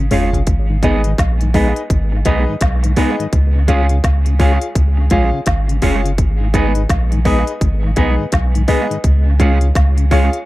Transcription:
0.11 sub bass F#1, tonewheel organ G#3 C#4 F4, clean electric guitar G#3 C#4 F4 G#4, upright piano F4 G#4 C#5 F5, mid tom, open hi-hat
0.33 tonewheel organ C#3, closed hi-hat, floor tom
0.47 sub bass G#1, kick, closed hi-hat
0.69 tonewheel organ G#2 D#3
0.83 clean electric guitar G#3 B3 D#4 G#4, tonewheel organ G#3 B3 D#4, upright piano D#4 G#4 B4 D#5, kick, closed hi-hat
1.04 tonewheel organ G#2 D#3, closed hi-hat
1.18 sub bass A#1, kick, snare, closed hi-hat
1.41 tonewheel organ G#2 D#3, closed hi-hat
1.54 clean electric guitar G#3 B3 D#4 G#4, tonewheel organ G#3 B3 D#4, upright piano D#4 G#4 B4 D#5, kick, open hi-hat
1.76 closed hi-hat
1.90 sub bass G#1, kick, closed hi-hat
2.12 tonewheel organ G#2 D#3, muted clean electric guitar stroke
2.25 sub bass B1, clean electric guitar G#3 B3 D#4 G#4, tonewheel organ G#3 B3 D#4, upright piano D#4 G#4 B4 D#5, kick, closed hi-hat
2.49 tonewheel organ G#2 D#3
2.61 sub bass B1, kick, snare, closed hi-hat
2.83 tonewheel organ G#2 D#3, muted clean electric guitar stroke, closed hi-hat
2.96 clean electric guitar G#3 B3 D#4 G#4, tonewheel organ G#3 B3 D#4, upright piano D#4 G#4 B4 D#5, kick, open hi-hat
3.19 tonewheel organ G#2 D#3, closed hi-hat
3.33 sub bass C#2, kick, closed hi-hat
3.56 tonewheel organ C#3
3.68 clean electric guitar G#3 C#4 F4 G#4, tonewheel organ G#3 C#4 F4, upright piano F4 G#4 C#5 F5, kick, closed hi-hat
3.89 tonewheel organ C#3, closed hi-hat
4.04 sub bass C#2, kick, snare, closed hi-hat
4.26 tonewheel organ C#3, closed hi-hat
4.39 clean electric guitar G#3 C#4 F4 G#4, tonewheel organ G#3 C#4 F4, upright piano F4 G#4 C#5 F5, kick, open hi-hat
4.62 closed hi-hat
4.75 sub bass C#2, kick, closed hi-hat
4.97 tonewheel organ C#3, muted clean electric guitar stroke
5.10 sub bass A#1, tonewheel organ G#3 C#4 F4, clean electric guitar G#3 C#4 F4 G#4, upright piano F4 G#4 C#5 F5, kick, closed hi-hat
5.32 tonewheel organ C#3
5.46 sub bass G#1, kick, snare, closed hi-hat
5.68 tonewheel organ C#3, closed hi-hat
5.82 sub bass F#1, clean electric guitar G#3 C#4 F4 G#4, tonewheel organ G#3 C#4 F4, upright piano F4 G#4 C#5 F5, kick, open hi-hat
6.05 tonewheel organ C#3, closed hi-hat
6.18 sub bass G#1, kick, closed hi-hat
6.40 tonewheel organ G#2 D#3
6.54 clean electric guitar G#3 B3 D#4 G#4, tonewheel organ G#3 B3 D#4, upright piano D#4 G#4 B4 D#5, kick, closed hi-hat
6.75 tonewheel organ G#2 D#3, closed hi-hat
6.89 sub bass A#1, kick, snare, closed hi-hat
7.12 tonewheel organ G#2 D#3, closed hi-hat
7.25 clean electric guitar G#3 B3 D#4 G#4, tonewheel organ G#3 B3 D#4, upright piano D#4 G#4 B4 D#5, kick, open hi-hat
7.47 closed hi-hat
7.61 sub bass G#1, kick, closed hi-hat
7.83 tonewheel organ G#2 D#3, muted clean electric guitar stroke
7.96 sub bass B1, tonewheel organ G#3 B3 D#4, clean electric guitar G#3 B3 D#4 G#4, upright piano D#4 G#4 B4 D#5, kick, closed hi-hat
8.19 tonewheel organ G#2 D#3
8.32 sub bass B1, kick, snare, closed hi-hat
8.55 tonewheel organ G#2 D#3, closed hi-hat
8.68 tonewheel organ G#3 B3 D#4, clean electric guitar G#3 B3 D#4 G#4, upright piano D#4 G#4 B4 D#5, kick, open hi-hat
8.90 tonewheel organ G#2 D#3, closed hi-hat
9.04 sub bass C#2, kick, closed hi-hat
9.26 tonewheel organ C#3
9.39 tonewheel organ G#3 C#4 F4, clean electric guitar G#3 C#4 F4 G#4, upright piano F4 G#4 C#5 F5, kick, closed hi-hat
9.61 tonewheel organ C#3, closed hi-hat
9.75 sub bass C#2, kick, snare, closed hi-hat
9.97 tonewheel organ C#3, closed hi-hat
10.10 tonewheel organ G#3 C#4 F4, clean electric guitar G#3 C#4 F4 G#4, upright piano F4 G#4 C#5 F5, kick, snare, open hi-hat
10.33 closed hi-hat

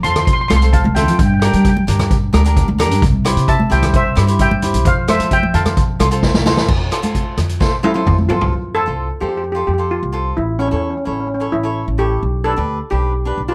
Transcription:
0.03 upright bass F2, cavaquinho F4 A4 C5, steel pan A5 C6, closed hi-hat, low conga
0.11 steel pan C6
0.16 steel pan C6, cross-stick, closed hi-hat, low conga
0.25 steel pan C6, kick, closed hi-hat
0.33 steel pan C6
0.41 steel pan C6
0.48 upright bass C2, cavaquinho F4 A4 C5, steel pan C6, cross-stick, closed hi-hat, high conga
0.56 steel pan C6
0.62 cavaquinho F4 A4 C5, closed hi-hat
0.73 steel pan F5 A5, kick, closed hi-hat
0.84 upright bass C2, high conga
0.95 cavaquinho F4 A4 C5, steel pan E5 G5, closed hi-hat, low conga
1.02 steel pan G5
1.08 upright bass F2, steel pan G5, closed hi-hat
1.19 upright bass G2, steel pan G5, kick, closed hi-hat
1.26 steel pan G5
1.34 steel pan G5
1.40 cavaquinho D4 G4 A#4, steel pan G5, cross-stick, closed hi-hat
1.47 steel pan G5
1.53 upright bass G3, steel pan G5, closed hi-hat
1.61 steel pan G5, kick, closed hi-hat
1.69 steel pan G5
1.77 high conga
1.87 upright bass G2, cavaquinho D4 G4 A#4, closed hi-hat, low conga
1.99 cross-stick, closed hi-hat, low conga
2.11 kick, closed hi-hat
2.33 upright bass D2, cavaquinho D4 G4 A#4, cross-stick, closed hi-hat, high conga
2.45 cavaquinho D4 G4 A#4, closed hi-hat
2.57 kick, closed hi-hat
2.68 upright bass D2, high conga
2.78 cavaquinho D4 G4 A#4, cross-stick, closed hi-hat, low conga
2.91 upright bass G2, closed hi-hat
3.02 upright bass C2, kick, closed hi-hat
3.25 cavaquinho E4 G4 C5, cross-stick, closed hi-hat
3.37 upright bass C3, closed hi-hat
3.48 steel pan E5 A5, kick, closed hi-hat
3.60 high conga
3.70 upright bass C2, cavaquinho E4 G4 C5, steel pan E5 G5, closed hi-hat, low conga
3.83 cross-stick, closed hi-hat, low conga
3.94 steel pan C5 E5, kick, closed hi-hat
4.15 upright bass G2, cavaquinho E4 G4 C5, cross-stick, closed hi-hat
4.27 cavaquinho E4 G4 C5, closed hi-hat
4.39 steel pan E5 G5, kick, closed hi-hat
4.51 upright bass G2, high conga
4.62 cavaquinho E4 G4 C5, closed hi-hat, low conga
4.74 upright bass C2, closed hi-hat
4.85 upright bass F2, steel pan C5 F5, kick, closed hi-hat
5.08 cavaquinho F4 A4 C5, steel pan C5 E5, cross-stick, closed hi-hat, high conga
5.20 upright bass F3, closed hi-hat
5.31 steel pan E5 G5, kick, closed hi-hat
5.43 high conga
5.54 upright bass F2, cavaquinho F4 A4 C5, steel pan F5 A5, closed hi-hat, low conga
5.65 cross-stick, closed hi-hat, high conga, low conga
5.77 kick, closed hi-hat
6.00 upright bass C2, cavaquinho F4 A4 C5, cross-stick, closed hi-hat, high conga
6.11 cavaquinho F4 A4 C5, closed hi-hat
6.23 kick, snare
6.34 upright bass C2, snare, high conga
6.46 cavaquinho F4 A4 C5, snare, low conga
6.57 upright bass F2, snare
6.68 upright bass F2, kick, crash
6.91 cavaquinho F4 A4 C5, cross-stick, closed hi-hat
7.02 cavaquinho F4 A4 C5, closed hi-hat, high conga
7.15 kick, closed hi-hat
7.37 upright bass F2, cross-stick, closed hi-hat, low conga
7.49 closed hi-hat
7.60 cavaquinho F4 A4 C5, kick, snare
7.83 steel pan E4, cavaquinho F4 A4 C5, high tom, high conga
7.94 cavaquinho F4 A4 C5, high tom
8.07 upright bass F2, kick, mid tom
8.18 high conga
8.29 upright bass F3, steel pan F4, cavaquinho F4 A4 C5, floor tom, high conga, low conga
8.41 upright bass C2, floor tom
8.53 upright bass F2
8.75 cavaquinho F4 A4 C5, steel pan A4
8.86 upright bass C2, cavaquinho F4 A4 C5
9.20 upright bass F2, cavaquinho F4 A4 C5, steel pan G4
9.29 steel pan G4
9.38 steel pan G4
9.44 steel pan G4
9.52 cavaquinho F4 A4, steel pan G4
9.56 steel pan G4, cavaquinho C5
9.67 upright bass F2, steel pan G4
9.74 steel pan G4
9.78 cavaquinho F4 A4 C5
9.91 steel pan F4
10.03 upright bass C2
10.12 cavaquinho F4 A4 C5
10.37 upright bass A1, steel pan E4
10.59 steel pan C#4, cavaquinho E4 A4 C#5
10.68 steel pan C#4, cavaquinho E4 A4
10.72 upright bass E2, steel pan C#4, cavaquinho C#5
10.83 steel pan C#4
10.90 steel pan C#4
10.97 steel pan C#4
11.05 upright bass A1, steel pan C#4, cavaquinho E4 A4 C#5
11.13 steel pan C#4
11.20 steel pan C#4
11.27 steel pan C#4
11.34 steel pan C#4
11.40 cavaquinho E4 A4 C#5
11.52 upright bass A1, steel pan E4
11.63 cavaquinho E4 A4 C#5
11.88 upright bass A1
11.98 cavaquinho E4 A4 C#5, steel pan G4
12.23 upright bass B1
12.44 cavaquinho D4 G4 B4, steel pan A4
12.56 upright bass D2, cavaquinho D4 G4 B4
12.90 upright bass B1, cavaquinho D4 G4 B4, steel pan G4
13.25 cavaquinho D4 G4 B4
13.38 upright bass B1
13.48 cavaquinho D4 G4 B4, steel pan F4

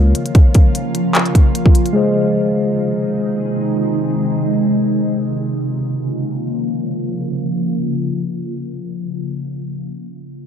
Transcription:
Already playing: 808-style bass C#2, ambient pad C#3 F3 A#3 F4, tine electric piano A#3 A#4 C#5 F5
0.15 closed hi-hat
0.26 closed hi-hat
0.35 kick, closed hi-hat
0.55 kick, closed hi-hat
0.75 closed hi-hat
0.95 closed hi-hat
1.15 clap, closed hi-hat
1.26 closed hi-hat
1.35 kick, closed hi-hat
1.55 closed hi-hat
1.66 kick
1.75 closed hi-hat
1.86 closed hi-hat
1.93 ambient pad C3 D#3 G#3 D#4, tine electric piano G#3 G#4 C5
1.97 tine electric piano D#5
5.15 ambient pad C#3 F3 A#3 F4

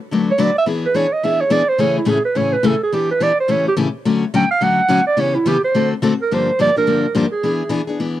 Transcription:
0.11 steel-string acoustic guitar D3 F#3 A3 D4 F#4 B4
0.31 clarinet C#5
0.38 steel-string acoustic guitar D3 F#3 A3 D4 F#4 B4, clarinet D5
0.58 clarinet E5
0.66 steel-string acoustic guitar E3 B3 D4 G#4
0.86 clarinet B4
0.94 steel-string acoustic guitar E3 B3 D4 G#4, clarinet C#5
1.13 clarinet D#5
1.23 steel-string acoustic guitar E3 B3 D4 G#4, clarinet E5
1.40 clarinet C#5
1.50 steel-string acoustic guitar E3 B3 D4 G#4, clarinet D5
1.69 clarinet C5
1.78 steel-string acoustic guitar A2 C#3 E3 A3 C#4 G#4, clarinet C#5
1.98 clarinet E4
2.05 steel-string acoustic guitar A2 C#3 E3 A3 C#4 G#4, clarinet G#4
2.25 clarinet B4
2.35 steel-string acoustic guitar A2 C#3 E3 A3 C#4 G#4, clarinet C#5
2.53 clarinet B4
2.63 steel-string acoustic guitar A2 C#3 E3 A3 C#4 G#4, clarinet A4
2.83 clarinet G#4
2.93 steel-string acoustic guitar E3 B3 D4 G4, clarinet G4
3.11 clarinet B4
3.20 steel-string acoustic guitar E3 B3 D4 G4, clarinet D5
3.40 clarinet C5
3.48 steel-string acoustic guitar A2 C#3 E3 A3 C#4 G4, clarinet C#5
3.68 clarinet G4
3.77 steel-string acoustic guitar A2 C#3 E3 A3 C#4 G4
4.05 steel-string acoustic guitar D3 F#3 A3 C#4 F#4
4.34 steel-string acoustic guitar D3 F#3 A3 C#4 F#4, clarinet G5
4.51 clarinet F5
4.61 steel-string acoustic guitar D3 F#3 A3 C#4 F#4, clarinet F#5
4.89 steel-string acoustic guitar D3 F#3 A3 C#4 F#4
5.07 clarinet D5
5.17 steel-string acoustic guitar C#3 E3 B3 C#4 G4, clarinet C#5
5.35 clarinet E4
5.46 steel-string acoustic guitar C#3 E3 B3 C#4 G4, clarinet G4
5.64 clarinet C5
5.74 steel-string acoustic guitar D3 A3 C4 F#4 A4
6.02 steel-string acoustic guitar D3 A3 C4 F#4 A4
6.22 clarinet A#4
6.31 steel-string acoustic guitar G2 D3 F3 A#3 D4 G4, clarinet C5
6.59 steel-string acoustic guitar G2 D3 F3 A#3 D4 G4, clarinet D5
6.76 steel-string acoustic guitar F3 A#3 D4 G4, clarinet A#4
6.87 steel-string acoustic guitar G2 D3 F3 A#3 D4 G4
7.15 steel-string acoustic guitar G2 D3 F3 A#3 D4 G4
7.32 clarinet G#4
7.43 steel-string acoustic guitar E3 B3 D4 G#4
7.69 steel-string acoustic guitar E3 B3 D4 G#4
7.87 steel-string acoustic guitar B3 D4 G#4
8.00 steel-string acoustic guitar E3 B3 D4 G#4

